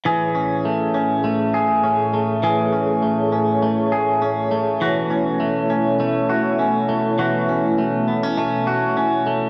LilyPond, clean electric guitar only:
\new Staff \with { instrumentName = "Clean electric guitar" } { \time 4/4 \key a \major \tempo 4 = 101 <e gis'>8 cis'8 a8 cis'8 a8 gis'8 cis'8 a8 | <e gis'>8 cis'8 a8 cis'8 a8 gis'8 cis'8 a8 | <e fis'>8 cis'8 a8 cis'8 a8 fis'8 cis'8 a8 | <e fis'>8 cis'8 a8 b16 cis'16 a8 fis'8 cis'8 a8 | }